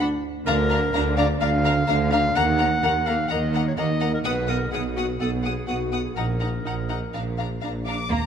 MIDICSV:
0, 0, Header, 1, 8, 480
1, 0, Start_track
1, 0, Key_signature, -6, "minor"
1, 0, Tempo, 473560
1, 473, Time_signature, 4, 2, 24, 8
1, 5274, Tempo, 483481
1, 8310, End_track
2, 0, Start_track
2, 0, Title_t, "Violin section"
2, 0, Program_c, 0, 48
2, 470, Note_on_c, 0, 82, 82
2, 551, Note_off_c, 0, 82, 0
2, 718, Note_on_c, 0, 82, 71
2, 799, Note_off_c, 0, 82, 0
2, 952, Note_on_c, 0, 82, 72
2, 1033, Note_off_c, 0, 82, 0
2, 1193, Note_on_c, 0, 82, 64
2, 1274, Note_off_c, 0, 82, 0
2, 1426, Note_on_c, 0, 82, 66
2, 1507, Note_off_c, 0, 82, 0
2, 1665, Note_on_c, 0, 82, 67
2, 1746, Note_off_c, 0, 82, 0
2, 1899, Note_on_c, 0, 82, 63
2, 1980, Note_off_c, 0, 82, 0
2, 2138, Note_on_c, 0, 82, 69
2, 2219, Note_off_c, 0, 82, 0
2, 2387, Note_on_c, 0, 82, 79
2, 2468, Note_off_c, 0, 82, 0
2, 2622, Note_on_c, 0, 82, 66
2, 2703, Note_off_c, 0, 82, 0
2, 2870, Note_on_c, 0, 82, 63
2, 2951, Note_off_c, 0, 82, 0
2, 3108, Note_on_c, 0, 82, 61
2, 3189, Note_off_c, 0, 82, 0
2, 3342, Note_on_c, 0, 82, 60
2, 3423, Note_off_c, 0, 82, 0
2, 3590, Note_on_c, 0, 82, 62
2, 3671, Note_off_c, 0, 82, 0
2, 3828, Note_on_c, 0, 82, 56
2, 3910, Note_off_c, 0, 82, 0
2, 4072, Note_on_c, 0, 82, 58
2, 4153, Note_off_c, 0, 82, 0
2, 4305, Note_on_c, 0, 87, 70
2, 4386, Note_off_c, 0, 87, 0
2, 4554, Note_on_c, 0, 87, 63
2, 4635, Note_off_c, 0, 87, 0
2, 4806, Note_on_c, 0, 87, 51
2, 4887, Note_off_c, 0, 87, 0
2, 5042, Note_on_c, 0, 87, 48
2, 5123, Note_off_c, 0, 87, 0
2, 5284, Note_on_c, 0, 87, 49
2, 5363, Note_off_c, 0, 87, 0
2, 5526, Note_on_c, 0, 87, 47
2, 5605, Note_off_c, 0, 87, 0
2, 5763, Note_on_c, 0, 87, 48
2, 5843, Note_off_c, 0, 87, 0
2, 5991, Note_on_c, 0, 87, 49
2, 6070, Note_off_c, 0, 87, 0
2, 6227, Note_on_c, 0, 82, 52
2, 6306, Note_off_c, 0, 82, 0
2, 6469, Note_on_c, 0, 82, 45
2, 6548, Note_off_c, 0, 82, 0
2, 6721, Note_on_c, 0, 82, 45
2, 6800, Note_off_c, 0, 82, 0
2, 6957, Note_on_c, 0, 82, 41
2, 7036, Note_off_c, 0, 82, 0
2, 7206, Note_on_c, 0, 82, 41
2, 7285, Note_off_c, 0, 82, 0
2, 7447, Note_on_c, 0, 82, 43
2, 7526, Note_off_c, 0, 82, 0
2, 7683, Note_on_c, 0, 82, 40
2, 7763, Note_off_c, 0, 82, 0
2, 7925, Note_on_c, 0, 82, 45
2, 8004, Note_off_c, 0, 82, 0
2, 8310, End_track
3, 0, Start_track
3, 0, Title_t, "Violin section"
3, 0, Program_c, 1, 48
3, 476, Note_on_c, 1, 77, 76
3, 557, Note_off_c, 1, 77, 0
3, 712, Note_on_c, 1, 77, 63
3, 793, Note_off_c, 1, 77, 0
3, 952, Note_on_c, 1, 77, 71
3, 1033, Note_off_c, 1, 77, 0
3, 1187, Note_on_c, 1, 77, 70
3, 1268, Note_off_c, 1, 77, 0
3, 1425, Note_on_c, 1, 77, 71
3, 1506, Note_off_c, 1, 77, 0
3, 1667, Note_on_c, 1, 77, 70
3, 1748, Note_off_c, 1, 77, 0
3, 1903, Note_on_c, 1, 77, 72
3, 1984, Note_off_c, 1, 77, 0
3, 2146, Note_on_c, 1, 77, 66
3, 2227, Note_off_c, 1, 77, 0
3, 2389, Note_on_c, 1, 78, 75
3, 2470, Note_off_c, 1, 78, 0
3, 2628, Note_on_c, 1, 78, 64
3, 2709, Note_off_c, 1, 78, 0
3, 2871, Note_on_c, 1, 78, 70
3, 2952, Note_off_c, 1, 78, 0
3, 3107, Note_on_c, 1, 78, 62
3, 3188, Note_off_c, 1, 78, 0
3, 3343, Note_on_c, 1, 78, 66
3, 3424, Note_off_c, 1, 78, 0
3, 3588, Note_on_c, 1, 78, 61
3, 3669, Note_off_c, 1, 78, 0
3, 3827, Note_on_c, 1, 78, 63
3, 3908, Note_off_c, 1, 78, 0
3, 4065, Note_on_c, 1, 78, 65
3, 4146, Note_off_c, 1, 78, 0
3, 4298, Note_on_c, 1, 78, 71
3, 4379, Note_off_c, 1, 78, 0
3, 4541, Note_on_c, 1, 78, 55
3, 4622, Note_off_c, 1, 78, 0
3, 4790, Note_on_c, 1, 78, 60
3, 4871, Note_off_c, 1, 78, 0
3, 5034, Note_on_c, 1, 78, 58
3, 5115, Note_off_c, 1, 78, 0
3, 5268, Note_on_c, 1, 78, 52
3, 5348, Note_off_c, 1, 78, 0
3, 5509, Note_on_c, 1, 78, 50
3, 5588, Note_off_c, 1, 78, 0
3, 5751, Note_on_c, 1, 78, 50
3, 5831, Note_off_c, 1, 78, 0
3, 5989, Note_on_c, 1, 78, 45
3, 6069, Note_off_c, 1, 78, 0
3, 6228, Note_on_c, 1, 78, 48
3, 6307, Note_off_c, 1, 78, 0
3, 6473, Note_on_c, 1, 78, 42
3, 6552, Note_off_c, 1, 78, 0
3, 6713, Note_on_c, 1, 78, 45
3, 6793, Note_off_c, 1, 78, 0
3, 6955, Note_on_c, 1, 78, 42
3, 7034, Note_off_c, 1, 78, 0
3, 7193, Note_on_c, 1, 77, 44
3, 7272, Note_off_c, 1, 77, 0
3, 7426, Note_on_c, 1, 77, 40
3, 7506, Note_off_c, 1, 77, 0
3, 7667, Note_on_c, 1, 77, 45
3, 7746, Note_off_c, 1, 77, 0
3, 7907, Note_on_c, 1, 86, 61
3, 7909, Note_on_c, 1, 77, 41
3, 7989, Note_off_c, 1, 77, 0
3, 8134, Note_off_c, 1, 86, 0
3, 8153, Note_on_c, 1, 82, 73
3, 8310, Note_off_c, 1, 82, 0
3, 8310, End_track
4, 0, Start_track
4, 0, Title_t, "Clarinet"
4, 0, Program_c, 2, 71
4, 0, Note_on_c, 2, 62, 89
4, 220, Note_off_c, 2, 62, 0
4, 472, Note_on_c, 2, 70, 111
4, 1151, Note_off_c, 2, 70, 0
4, 1192, Note_on_c, 2, 74, 110
4, 1299, Note_off_c, 2, 74, 0
4, 1431, Note_on_c, 2, 77, 109
4, 2134, Note_off_c, 2, 77, 0
4, 2150, Note_on_c, 2, 77, 122
4, 2394, Note_on_c, 2, 78, 115
4, 2409, Note_off_c, 2, 77, 0
4, 3110, Note_on_c, 2, 77, 100
4, 3125, Note_off_c, 2, 78, 0
4, 3348, Note_off_c, 2, 77, 0
4, 3355, Note_on_c, 2, 75, 87
4, 3704, Note_off_c, 2, 75, 0
4, 3728, Note_on_c, 2, 73, 82
4, 3777, Note_off_c, 2, 73, 0
4, 3840, Note_on_c, 2, 75, 108
4, 4186, Note_off_c, 2, 75, 0
4, 4202, Note_on_c, 2, 70, 86
4, 4253, Note_off_c, 2, 70, 0
4, 4313, Note_on_c, 2, 71, 97
4, 4557, Note_on_c, 2, 70, 84
4, 4573, Note_off_c, 2, 71, 0
4, 4784, Note_off_c, 2, 70, 0
4, 4790, Note_on_c, 2, 68, 76
4, 4899, Note_off_c, 2, 68, 0
4, 5032, Note_on_c, 2, 66, 77
4, 5141, Note_off_c, 2, 66, 0
4, 5272, Note_on_c, 2, 69, 75
4, 5379, Note_off_c, 2, 69, 0
4, 5506, Note_on_c, 2, 68, 65
4, 5735, Note_off_c, 2, 68, 0
4, 5741, Note_on_c, 2, 66, 76
4, 6098, Note_off_c, 2, 66, 0
4, 6108, Note_on_c, 2, 68, 55
4, 6216, Note_on_c, 2, 70, 69
4, 6231, Note_off_c, 2, 68, 0
4, 7670, Note_off_c, 2, 70, 0
4, 8310, End_track
5, 0, Start_track
5, 0, Title_t, "Viola section"
5, 0, Program_c, 3, 48
5, 1, Note_on_c, 3, 62, 64
5, 82, Note_off_c, 3, 62, 0
5, 479, Note_on_c, 3, 62, 76
5, 560, Note_off_c, 3, 62, 0
5, 723, Note_on_c, 3, 62, 64
5, 804, Note_off_c, 3, 62, 0
5, 960, Note_on_c, 3, 62, 74
5, 1041, Note_off_c, 3, 62, 0
5, 1193, Note_on_c, 3, 62, 67
5, 1274, Note_off_c, 3, 62, 0
5, 1433, Note_on_c, 3, 62, 72
5, 1514, Note_off_c, 3, 62, 0
5, 1670, Note_on_c, 3, 62, 64
5, 1751, Note_off_c, 3, 62, 0
5, 1909, Note_on_c, 3, 62, 66
5, 1990, Note_off_c, 3, 62, 0
5, 2150, Note_on_c, 3, 62, 64
5, 2231, Note_off_c, 3, 62, 0
5, 2395, Note_on_c, 3, 58, 67
5, 2476, Note_off_c, 3, 58, 0
5, 2631, Note_on_c, 3, 58, 63
5, 2712, Note_off_c, 3, 58, 0
5, 2870, Note_on_c, 3, 58, 74
5, 2951, Note_off_c, 3, 58, 0
5, 3112, Note_on_c, 3, 58, 68
5, 3193, Note_off_c, 3, 58, 0
5, 3354, Note_on_c, 3, 58, 64
5, 3435, Note_off_c, 3, 58, 0
5, 3594, Note_on_c, 3, 58, 58
5, 3675, Note_off_c, 3, 58, 0
5, 3832, Note_on_c, 3, 58, 61
5, 3913, Note_off_c, 3, 58, 0
5, 4069, Note_on_c, 3, 58, 54
5, 4150, Note_off_c, 3, 58, 0
5, 4310, Note_on_c, 3, 59, 67
5, 4391, Note_off_c, 3, 59, 0
5, 4550, Note_on_c, 3, 59, 61
5, 4631, Note_off_c, 3, 59, 0
5, 4792, Note_on_c, 3, 59, 58
5, 4873, Note_off_c, 3, 59, 0
5, 5032, Note_on_c, 3, 59, 57
5, 5113, Note_off_c, 3, 59, 0
5, 5274, Note_on_c, 3, 59, 51
5, 5354, Note_off_c, 3, 59, 0
5, 5511, Note_on_c, 3, 59, 47
5, 5591, Note_off_c, 3, 59, 0
5, 5748, Note_on_c, 3, 59, 44
5, 5827, Note_off_c, 3, 59, 0
5, 5988, Note_on_c, 3, 59, 44
5, 6068, Note_off_c, 3, 59, 0
5, 6231, Note_on_c, 3, 63, 48
5, 6310, Note_off_c, 3, 63, 0
5, 6472, Note_on_c, 3, 63, 44
5, 6551, Note_off_c, 3, 63, 0
5, 6709, Note_on_c, 3, 63, 46
5, 6788, Note_off_c, 3, 63, 0
5, 6956, Note_on_c, 3, 63, 45
5, 7035, Note_off_c, 3, 63, 0
5, 7198, Note_on_c, 3, 62, 47
5, 7277, Note_off_c, 3, 62, 0
5, 7441, Note_on_c, 3, 62, 37
5, 7521, Note_off_c, 3, 62, 0
5, 7682, Note_on_c, 3, 62, 43
5, 7761, Note_off_c, 3, 62, 0
5, 7926, Note_on_c, 3, 62, 39
5, 8006, Note_off_c, 3, 62, 0
5, 8310, End_track
6, 0, Start_track
6, 0, Title_t, "Cello section"
6, 0, Program_c, 4, 48
6, 474, Note_on_c, 4, 50, 92
6, 897, Note_off_c, 4, 50, 0
6, 953, Note_on_c, 4, 50, 86
6, 1374, Note_off_c, 4, 50, 0
6, 1430, Note_on_c, 4, 50, 83
6, 1851, Note_off_c, 4, 50, 0
6, 1912, Note_on_c, 4, 50, 85
6, 2334, Note_off_c, 4, 50, 0
6, 2387, Note_on_c, 4, 51, 97
6, 2811, Note_off_c, 4, 51, 0
6, 2870, Note_on_c, 4, 51, 72
6, 3291, Note_off_c, 4, 51, 0
6, 3350, Note_on_c, 4, 51, 80
6, 3772, Note_off_c, 4, 51, 0
6, 3828, Note_on_c, 4, 51, 69
6, 4251, Note_off_c, 4, 51, 0
6, 4308, Note_on_c, 4, 47, 80
6, 4734, Note_off_c, 4, 47, 0
6, 4792, Note_on_c, 4, 47, 68
6, 5218, Note_off_c, 4, 47, 0
6, 5270, Note_on_c, 4, 47, 70
6, 5691, Note_off_c, 4, 47, 0
6, 5746, Note_on_c, 4, 47, 56
6, 6171, Note_off_c, 4, 47, 0
6, 6225, Note_on_c, 4, 46, 60
6, 6654, Note_off_c, 4, 46, 0
6, 6709, Note_on_c, 4, 46, 54
6, 7137, Note_off_c, 4, 46, 0
6, 7191, Note_on_c, 4, 46, 57
6, 7618, Note_off_c, 4, 46, 0
6, 7673, Note_on_c, 4, 46, 55
6, 7911, Note_off_c, 4, 46, 0
6, 7915, Note_on_c, 4, 62, 67
6, 7994, Note_off_c, 4, 62, 0
6, 8154, Note_on_c, 4, 58, 90
6, 8233, Note_off_c, 4, 58, 0
6, 8310, End_track
7, 0, Start_track
7, 0, Title_t, "Double bass section"
7, 0, Program_c, 5, 48
7, 475, Note_on_c, 5, 38, 91
7, 897, Note_off_c, 5, 38, 0
7, 954, Note_on_c, 5, 38, 80
7, 1375, Note_off_c, 5, 38, 0
7, 1432, Note_on_c, 5, 38, 80
7, 1852, Note_off_c, 5, 38, 0
7, 1910, Note_on_c, 5, 38, 77
7, 2332, Note_off_c, 5, 38, 0
7, 2386, Note_on_c, 5, 39, 86
7, 2810, Note_off_c, 5, 39, 0
7, 2869, Note_on_c, 5, 39, 70
7, 3291, Note_off_c, 5, 39, 0
7, 3347, Note_on_c, 5, 39, 77
7, 3770, Note_off_c, 5, 39, 0
7, 3829, Note_on_c, 5, 39, 73
7, 4252, Note_off_c, 5, 39, 0
7, 4305, Note_on_c, 5, 35, 74
7, 4733, Note_off_c, 5, 35, 0
7, 4788, Note_on_c, 5, 35, 67
7, 5216, Note_off_c, 5, 35, 0
7, 5268, Note_on_c, 5, 35, 59
7, 5690, Note_off_c, 5, 35, 0
7, 5747, Note_on_c, 5, 35, 59
7, 6172, Note_off_c, 5, 35, 0
7, 6226, Note_on_c, 5, 34, 55
7, 6654, Note_off_c, 5, 34, 0
7, 6714, Note_on_c, 5, 34, 52
7, 7139, Note_off_c, 5, 34, 0
7, 7196, Note_on_c, 5, 34, 48
7, 7621, Note_off_c, 5, 34, 0
7, 7680, Note_on_c, 5, 34, 50
7, 8102, Note_off_c, 5, 34, 0
7, 8155, Note_on_c, 5, 39, 66
7, 8310, Note_off_c, 5, 39, 0
7, 8310, End_track
8, 0, Start_track
8, 0, Title_t, "Tuba"
8, 0, Program_c, 6, 58
8, 470, Note_on_c, 6, 38, 86
8, 895, Note_off_c, 6, 38, 0
8, 948, Note_on_c, 6, 38, 84
8, 1372, Note_off_c, 6, 38, 0
8, 1429, Note_on_c, 6, 38, 89
8, 1851, Note_off_c, 6, 38, 0
8, 1901, Note_on_c, 6, 38, 89
8, 2328, Note_off_c, 6, 38, 0
8, 2384, Note_on_c, 6, 39, 84
8, 2809, Note_off_c, 6, 39, 0
8, 2862, Note_on_c, 6, 39, 74
8, 3288, Note_off_c, 6, 39, 0
8, 3341, Note_on_c, 6, 39, 73
8, 3767, Note_off_c, 6, 39, 0
8, 3823, Note_on_c, 6, 39, 70
8, 4249, Note_off_c, 6, 39, 0
8, 4299, Note_on_c, 6, 35, 74
8, 4730, Note_off_c, 6, 35, 0
8, 4785, Note_on_c, 6, 35, 73
8, 5214, Note_off_c, 6, 35, 0
8, 5266, Note_on_c, 6, 35, 67
8, 5689, Note_off_c, 6, 35, 0
8, 5746, Note_on_c, 6, 35, 57
8, 6171, Note_off_c, 6, 35, 0
8, 6232, Note_on_c, 6, 34, 57
8, 6657, Note_off_c, 6, 34, 0
8, 6713, Note_on_c, 6, 34, 55
8, 7070, Note_off_c, 6, 34, 0
8, 7198, Note_on_c, 6, 34, 52
8, 7621, Note_off_c, 6, 34, 0
8, 7680, Note_on_c, 6, 34, 52
8, 8101, Note_off_c, 6, 34, 0
8, 8310, End_track
0, 0, End_of_file